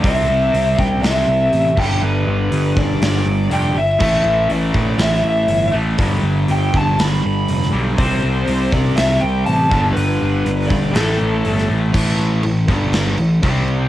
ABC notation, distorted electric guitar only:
X:1
M:4/4
L:1/8
Q:1/4=121
K:Gmix
V:1 name="Distorted electric guitar" clef=bass
[C,G,C]6- [C,G,C] [G,,D,G,]- | [G,,D,G,]6 [G,,D,G,] z | [A,,E,A,]6- [A,,E,A,] [A,,E,A,] | [G,,D,G,]6- [G,,D,G,] [G,,D,G,] |
[C,G,C]6- [C,G,C] [G,,D,G,]- | [G,,D,G,]4 [A,,E,A,]4 | [A,,E,A,]2 [A,,E,] [G,,D,G,]2 [A,,E,] [C,G,C]2 |]